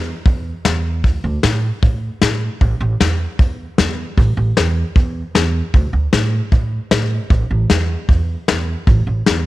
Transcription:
0.00 0.12 E2 loud
0.25 0.51 E2 medium
0.25 kick loud
0.25 open hi-hat medium
0.65 1.04 E2 medium
0.65 snare loud
0.65 open hi-hat medium
1.04 1.17 D2 medium
1.04 kick loud
1.04 open hi-hat medium
1.24 1.36 D2 loud
1.43 1.68 A2 loud
1.43 snare loud
1.43 open hi-hat medium
1.83 2.08 A2 medium
1.83 kick loud
1.83 open hi-hat soft
2.21 2.47 A2 medium
2.21 snare loud
2.61 2.73 A1 medium
2.61 kick loud
2.61 open hi-hat soft
2.80 2.93 A1 loud
3.00 3.25 E2 medium
3.00 snare loud
3.00 open hi-hat medium
3.39 3.64 E2 medium
3.39 kick loud
3.39 open hi-hat medium
3.78 4.03 E2 medium
3.78 snare loud
3.78 open hi-hat medium
4.18 4.30 A1 loud
4.18 kick loud
4.18 open hi-hat medium
4.37 4.49 A1 loud
4.57 4.82 E2 loud
4.57 snare loud
4.57 open hi-hat medium
4.96 5.21 E2 medium
4.96 kick loud
4.96 open hi-hat soft
5.35 5.60 E2 medium
5.35 snare loud
5.74 5.86 D2 loud
5.74 kick loud
5.74 open hi-hat soft
5.93 6.06 D2 medium
6.13 6.38 A2 loud
6.13 snare loud
6.13 open hi-hat medium
6.52 6.77 A2 medium
6.52 kick loud
6.52 open hi-hat medium
6.91 7.16 A2 medium
6.91 snare loud
6.91 open hi-hat medium
7.30 7.43 A1 medium
7.30 kick loud
7.30 open hi-hat soft
7.51 7.63 A1 medium
7.70 7.95 E2 loud
7.70 snare loud
8.09 8.34 E2 medium
8.09 kick loud
8.09 open hi-hat soft
8.48 8.73 E2 medium
8.48 snare loud
8.48 open hi-hat soft
8.87 9.00 A1 loud
8.87 kick loud
8.87 open hi-hat soft
9.07 9.19 A1 medium
9.26 9.46 E2 loud
9.26 snare loud

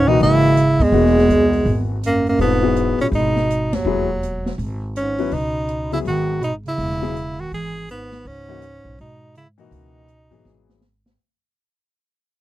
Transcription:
0.00 0.16 C#2 medium
0.07 0.20 B2 medium
0.07 0.54 E3 medium
0.07 0.54 A#3 medium
0.07 0.21 D#4 medium
0.07 0.55 F#4 medium
0.07 0.54 D#5 medium
0.20 0.76 G#1 medium
0.20 0.82 C#3 medium
0.20 0.84 E4 loud
0.20 open hi-hat soft
0.57 closed hi-hat medium
0.79 1.90 E2 medium
0.79 0.91 G#2 medium
0.79 1.91 G#3 loud
0.79 kick medium
0.79 open hi-hat soft
0.92 1.26 E1 medium
0.92 1.94 E3 medium
0.92 1.95 A#3 medium
0.92 1.95 D#4 medium
0.92 1.95 F#4 medium
0.92 open hi-hat soft
1.06 snare soft
1.18 snare soft
1.29 1.63 C2 medium
1.29 closed hi-hat soft
1.53 open hi-hat soft
1.66 2.36 G#1 medium
1.66 open hi-hat soft
2.03 2.25 F#2 medium
2.03 2.26 A#3 medium
2.03 closed hi-hat medium
2.27 2.40 F#2 medium
2.27 2.40 A#3 medium
2.27 open hi-hat soft
2.39 2.95 E1 medium
2.39 2.96 G#2 medium
2.39 2.60 G3 medium
2.39 2.96 B3 medium
2.39 2.60 C4 medium
2.39 2.61 F4 medium
2.39 2.61 A4 medium
2.39 open hi-hat soft
2.63 3.41 F#3 medium
2.63 3.41 B3 medium
2.63 3.42 E4 medium
2.63 3.42 G#4 medium
2.76 closed hi-hat soft
2.99 3.07 A#2 medium
2.99 3.07 C#4 medium
2.99 muted upright bass stroke soft
2.99 open hi-hat soft
3.12 3.82 G#1 medium
3.12 3.76 B2 medium
3.12 3.76 D#4 loud
3.12 open hi-hat soft
3.36 snare soft
3.50 closed hi-hat medium
3.73 4.54 D#2 medium
3.73 4.54 F#3 medium
3.73 snare medium
3.73 ride medium
3.85 4.55 E1 medium
3.85 4.07 F#3 medium
3.85 4.07 B3 medium
3.85 4.07 E4 medium
3.85 4.07 G#4 medium
4.23 closed hi-hat medium
4.46 snare medium
4.58 5.28 G#1 medium
4.58 open hi-hat soft
4.96 5.34 G#2 medium
4.96 5.35 C#4 medium
4.96 closed hi-hat medium
5.18 5.31 F#3 medium
5.18 5.31 B3 medium
5.18 5.32 E4 medium
5.18 5.32 B4 medium
5.18 open hi-hat soft
5.31 6.02 C#2 medium
5.31 5.92 B2 medium
5.31 5.93 D#4 medium
5.31 open hi-hat soft
5.69 closed hi-hat medium
5.92 5.99 C#3 medium
5.92 6.40 F#3 medium
5.92 6.40 B3 medium
5.92 5.99 E4 medium
5.92 6.40 G#4 medium
5.92 6.40 E5 medium
5.92 open hi-hat soft
6.05 6.75 G#1 medium
6.05 6.40 D#3 medium
6.05 6.41 F#4 medium
6.05 open hi-hat soft
6.41 6.52 B2 medium
6.41 6.54 D#4 medium
6.41 closed hi-hat medium
6.66 7.41 C#3 medium
6.66 7.42 E4 loud
6.66 open hi-hat soft
6.78 7.48 E1 medium
6.78 open hi-hat soft
6.92 snare soft
7.02 7.14 F#3 medium
7.02 7.14 B3 medium
7.02 7.15 E4 medium
7.02 7.15 G#4 medium
7.02 snare soft
7.16 closed hi-hat medium
7.39 7.52 D#3 medium
7.39 7.53 F#4 medium
7.39 open hi-hat soft
7.52 8.22 G#1 medium
7.52 7.86 E3 medium
7.52 7.87 G#4 loud
7.52 open hi-hat soft
7.89 8.27 G#2 medium
7.89 8.28 B3 medium
7.89 closed hi-hat medium
8.12 snare soft
8.12 open hi-hat soft
8.25 8.81 C#2 medium
8.25 8.99 G#2 medium
8.25 9.00 C#4 loud
8.25 open hi-hat soft
8.48 8.61 E3 medium
8.48 8.61 A#3 medium
8.48 8.61 D#4 medium
8.48 8.61 F#4 medium
8.62 closed hi-hat medium
8.85 8.98 B1 medium
8.98 9.68 G#2 medium
8.98 9.33 B2 medium
8.98 9.34 D#4 medium
8.98 open hi-hat soft
9.35 9.46 C#3 medium
9.35 9.47 E4 medium
9.35 closed hi-hat medium
9.58 10.78 B2 medium
9.58 10.06 E3 medium
9.58 10.06 A#3 medium
9.58 10.06 D#4 medium
9.58 10.79 D#4 medium
9.58 10.06 F#4 medium
9.58 open hi-hat soft
9.71 10.27 C#2 medium
9.71 open hi-hat soft
10.08 closed hi-hat medium
10.30 10.44 G#2 medium
10.30 10.79 E3 medium
10.30 10.79 F#3 medium
10.30 10.79 B3 medium
10.30 10.79 G#4 medium
10.30 open hi-hat soft
10.45 11.15 G#1 medium
10.45 snare soft
10.69 snare medium
10.81 snare medium
11.06 snare medium

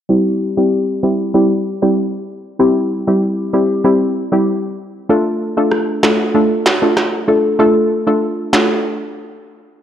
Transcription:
0.09 0.53 G3 medium
0.09 0.53 C4 medium
0.09 0.53 E4 medium
0.09 0.54 G4 loud
0.57 1.00 G3 medium
0.57 1.00 C4 medium
0.57 1.00 E4 medium
0.57 1.00 G4 medium
1.03 1.32 G3 medium
1.03 1.32 C4 medium
1.03 1.32 E4 medium
1.03 1.32 G4 medium
1.34 1.52 G3 medium
1.34 1.52 C4 medium
1.34 1.52 E4 medium
1.34 1.52 G4 loud
1.82 1.98 G3 medium
1.82 1.98 C4 medium
1.82 1.98 E4 medium
1.82 1.98 G4 medium
2.59 3.03 G3 medium
2.59 3.03 C4 medium
2.59 3.03 E4 medium
2.59 3.03 G4 loud
3.07 3.50 G3 medium
3.07 3.50 C4 medium
3.07 3.50 E4 medium
3.07 3.50 G4 medium
3.53 3.82 G3 medium
3.53 3.82 C4 medium
3.53 3.82 E4 medium
3.53 3.82 G4 medium
3.84 4.02 G3 medium
3.84 4.02 C4 medium
3.84 4.02 E4 medium
3.84 4.02 G4 loud
4.32 4.48 G3 medium
4.32 4.48 C4 medium
4.32 4.48 E4 medium
4.32 4.49 G4 medium
5.09 5.53 A3 medium
5.09 5.53 D4 medium
5.09 5.53 F4 medium
5.09 5.53 A4 loud
5.57 6.00 A3 medium
5.57 6.00 D4 medium
5.57 6.00 F4 medium
5.57 6.00 A4 medium
5.72 cross-stick medium
6.03 6.32 A3 medium
6.03 6.32 D4 medium
6.03 6.32 F4 medium
6.03 6.32 A4 medium
6.03 finger snap medium
6.03 snare loud
6.34 6.52 A3 medium
6.34 6.52 D4 medium
6.34 6.52 F4 medium
6.34 6.52 A4 loud
6.66 finger snap loud
6.66 snare loud
6.82 7.25 A3 medium
6.82 7.25 D4 medium
6.82 7.25 F4 medium
6.82 7.25 A4 medium
6.97 cross-stick medium
6.97 snare medium
7.28 7.57 A3 medium
7.28 7.57 D4 medium
7.28 7.57 F4 medium
7.28 7.57 A4 medium
7.59 8.03 A3 medium
7.59 8.03 D4 medium
7.59 8.03 F4 medium
7.59 8.03 A4 loud
8.07 8.49 A3 medium
8.07 8.50 D4 medium
8.07 8.50 F4 medium
8.07 8.50 A4 medium
8.53 8.82 A3 medium
8.53 8.82 D4 medium
8.53 8.82 F4 medium
8.53 8.82 A4 medium
8.53 finger snap medium
8.53 snare loud

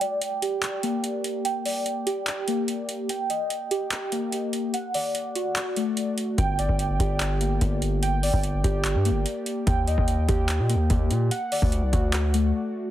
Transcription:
0.00 1.24 D5 medium
0.00 1.04 G5 loud
0.00 closed hi-hat medium
0.22 closed hi-hat medium
0.42 1.65 G4 medium
0.42 closed hi-hat medium
0.63 clap loud
0.63 closed hi-hat medium
0.83 2.06 A#3 medium
0.83 closed hi-hat medium
1.04 closed hi-hat medium
1.24 closed hi-hat medium
1.45 2.68 G5 loud
1.45 closed hi-hat medium
1.65 2.89 D5 medium
1.65 open hi-hat medium
1.86 closed hi-hat medium
2.06 3.09 G4 medium
2.06 closed hi-hat medium
2.27 clap loud
2.27 closed hi-hat medium
2.48 3.09 A#3 medium
2.48 closed hi-hat medium
2.68 closed hi-hat medium
2.89 closed hi-hat medium
3.09 4.33 G5 loud
3.09 closed hi-hat medium
3.30 4.53 D#5 medium
3.30 closed hi-hat medium
3.50 closed hi-hat medium
3.71 4.74 G4 loud
3.71 closed hi-hat medium
3.92 clap loud
3.92 closed hi-hat medium
4.12 4.74 A#3 medium
4.12 closed hi-hat medium
4.32 closed hi-hat medium
4.53 closed hi-hat medium
4.74 5.97 F#5 loud
4.74 closed hi-hat medium
4.94 6.18 D5 medium
4.94 open hi-hat medium
5.15 closed hi-hat medium
5.35 6.38 F#4 medium
5.35 closed hi-hat medium
5.56 clap loud
5.56 closed hi-hat medium
5.76 6.38 A3 medium
5.76 closed hi-hat medium
5.97 closed hi-hat medium
6.18 closed hi-hat medium
6.38 6.68 G1 loud
6.38 7.61 G5 loud
6.38 kick loud
6.38 closed hi-hat medium
6.59 7.82 D5 medium
6.59 closed hi-hat medium
6.69 6.99 G1 loud
6.69 kick medium
6.79 closed hi-hat medium
7.00 7.59 G1 loud
7.00 8.23 G4 medium
7.00 kick loud
7.00 closed hi-hat medium
7.20 clap loud
7.20 closed hi-hat medium
7.41 8.64 A#3 medium
7.41 closed hi-hat medium
7.61 8.30 G1 loud
7.61 kick medium
7.61 closed hi-hat medium
7.82 closed hi-hat medium
8.02 9.26 G5 loud
8.02 closed hi-hat medium
8.23 9.46 D5 medium
8.23 open hi-hat medium
8.33 8.63 G1 loud
8.33 kick medium
8.43 closed hi-hat medium
8.64 8.96 G1 loud
8.64 9.67 G4 loud
8.64 kick loud
8.64 closed hi-hat medium
8.85 clap loud
8.85 closed hi-hat medium
8.95 9.12 G2 loud
9.05 9.67 A#3 medium
9.05 closed hi-hat medium
9.10 9.25 G1 loud
9.26 closed hi-hat medium
9.46 closed hi-hat medium
9.67 9.96 D#2 loud
9.67 10.90 G5 loud
9.67 kick loud
9.67 closed hi-hat medium
9.87 11.11 D#5 medium
9.87 closed hi-hat medium
9.98 10.27 D#2 loud
9.98 kick medium
10.08 closed hi-hat medium
10.28 10.61 D#2 loud
10.28 11.31 G4 loud
10.28 kick loud
10.28 closed hi-hat medium
10.49 clap loud
10.49 closed hi-hat medium
10.59 10.76 A#2 loud
10.69 11.31 A#3 medium
10.69 closed hi-hat medium
10.75 10.89 D#2 loud
10.90 11.12 D#2 loud
10.90 kick medium
10.90 closed hi-hat medium
11.11 11.30 A#2 loud
11.11 closed hi-hat medium
11.31 12.54 F#5 loud
11.31 closed hi-hat medium
11.52 12.75 D5 medium
11.52 open hi-hat medium
11.62 11.84 D2 loud
11.62 kick medium
11.72 closed hi-hat medium
11.83 11.92 C2 loud
11.93 12.52 D2 loud
11.93 12.91 F#4 medium
11.93 kick loud
11.93 closed hi-hat medium
12.13 clap loud
12.13 closed hi-hat medium
12.34 12.91 A3 medium
12.34 closed hi-hat medium

